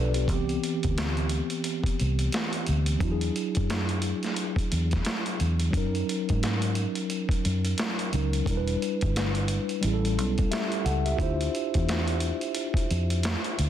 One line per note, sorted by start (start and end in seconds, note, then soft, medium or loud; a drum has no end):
0.00 0.29 B1 medium
0.00 0.23 F3 medium
0.00 0.29 D4 medium
0.00 0.30 F4 medium
0.00 0.14 A4 medium
0.00 0.30 B4 medium
0.00 0.29 D5 medium
0.14 0.28 B3 medium
0.14 0.32 G4 medium
0.14 closed hi-hat medium
0.27 0.56 C2 loud
0.27 2.96 E3 medium
0.27 2.97 B3 medium
0.27 kick loud
0.27 closed hi-hat medium
0.31 2.98 C4 medium
0.31 2.99 G4 medium
0.49 closed hi-hat soft
0.64 closed hi-hat medium
0.83 1.40 D2 medium
0.83 kick medium
0.83 closed hi-hat soft
0.98 snare loud
0.98 closed hi-hat medium
1.17 closed hi-hat soft
1.29 closed hi-hat medium
1.50 closed hi-hat soft
1.64 closed hi-hat medium
1.84 muted fingered electric bass stroke soft
1.84 kick medium
1.84 closed hi-hat soft
2.00 2.28 C2 medium
2.00 closed hi-hat medium
2.19 closed hi-hat soft
2.32 snare loud
2.32 closed hi-hat medium
2.53 closed hi-hat soft
2.67 2.96 D2 medium
2.67 closed hi-hat medium
2.86 closed hi-hat medium
2.99 3.29 E2 loud
2.99 5.68 F#3 medium
2.99 5.69 D4 medium
2.99 kick loud
2.99 closed hi-hat medium
3.03 5.70 E4 medium
3.03 3.10 F#4 medium
3.12 5.75 G#4 medium
3.21 closed hi-hat soft
3.36 closed hi-hat medium
3.55 4.12 F#2 medium
3.55 kick medium
3.55 closed hi-hat soft
3.70 snare medium
3.70 closed hi-hat medium
3.89 closed hi-hat soft
4.02 closed hi-hat medium
4.23 snare soft
4.23 closed hi-hat soft
4.36 closed hi-hat medium
4.56 muted fingered electric bass stroke soft
4.56 kick medium
4.56 closed hi-hat soft
4.72 5.00 E2 medium
4.72 closed hi-hat medium
4.91 kick medium
4.91 snare soft
4.91 closed hi-hat soft
5.05 snare loud
5.05 closed hi-hat medium
5.26 closed hi-hat soft
5.40 5.68 E2 medium
5.40 closed hi-hat medium
5.60 closed hi-hat medium
5.71 6.02 F#2 medium
5.71 8.06 F#3 medium
5.71 8.07 C#4 medium
5.71 kick loud
5.71 closed hi-hat medium
5.75 8.09 D#4 medium
5.75 8.10 A#4 medium
5.95 closed hi-hat soft
6.09 closed hi-hat medium
6.29 6.85 G#2 medium
6.29 kick medium
6.29 closed hi-hat soft
6.43 snare medium
6.43 closed hi-hat medium
6.62 closed hi-hat soft
6.75 closed hi-hat medium
6.95 closed hi-hat soft
7.10 closed hi-hat medium
7.29 kick medium
7.29 closed hi-hat soft
7.45 7.73 F#2 medium
7.45 closed hi-hat medium
7.65 closed hi-hat soft
7.78 snare loud
7.78 closed hi-hat medium
7.99 closed hi-hat soft
8.12 8.41 C#2 medium
8.12 8.46 F#3 medium
8.12 8.46 C#4 soft
8.12 8.47 D#4 medium
8.12 8.48 A#4 medium
8.12 closed hi-hat medium
8.33 closed hi-hat medium
8.45 8.74 E1 medium
8.45 9.79 G3 medium
8.45 9.80 D4 medium
8.45 9.81 E4 medium
8.45 kick loud
8.45 closed hi-hat medium
8.51 8.56 A#4 medium
8.57 9.85 B4 medium
8.68 closed hi-hat medium
8.82 closed hi-hat medium
9.01 9.58 G1 medium
9.01 kick medium
9.01 closed hi-hat soft
9.16 snare loud
9.16 closed hi-hat medium
9.35 closed hi-hat soft
9.48 closed hi-hat medium
9.69 closed hi-hat soft
9.81 10.18 A1 loud
9.81 11.15 G3 medium
9.81 11.16 C#4 medium
9.81 11.17 E4 medium
9.81 closed hi-hat medium
9.87 9.92 G#4 medium
9.94 10.55 A4 medium
10.05 closed hi-hat soft
10.18 10.45 B1 loud
10.18 closed hi-hat medium
10.38 kick medium
10.38 closed hi-hat soft
10.51 10.83 G4 medium
10.51 10.83 E5 medium
10.51 snare loud
10.51 closed hi-hat medium
10.72 closed hi-hat soft
10.85 11.13 C#2 loud
10.85 11.04 A4 medium
10.85 11.04 F#5 medium
10.85 closed hi-hat medium
11.06 11.38 G4 medium
11.06 11.37 E5 medium
11.06 closed hi-hat medium
11.17 11.47 D2 loud
11.17 13.69 D4 medium
11.17 13.69 E4 medium
11.17 13.69 F4 medium
11.17 kick loud
11.17 closed hi-hat medium
11.23 13.69 C5 medium
11.41 closed hi-hat medium
11.55 closed hi-hat medium
11.74 12.31 E2 medium
11.74 kick medium
11.74 closed hi-hat soft
11.89 snare loud
11.89 closed hi-hat medium
12.08 closed hi-hat medium
12.20 closed hi-hat medium
12.41 closed hi-hat soft
12.55 closed hi-hat medium
12.74 kick medium
12.74 closed hi-hat soft
12.91 13.34 F2 medium
12.91 closed hi-hat medium
13.10 closed hi-hat soft
13.23 snare loud
13.23 closed hi-hat medium
13.44 closed hi-hat soft
13.59 13.69 D2 medium
13.59 closed hi-hat medium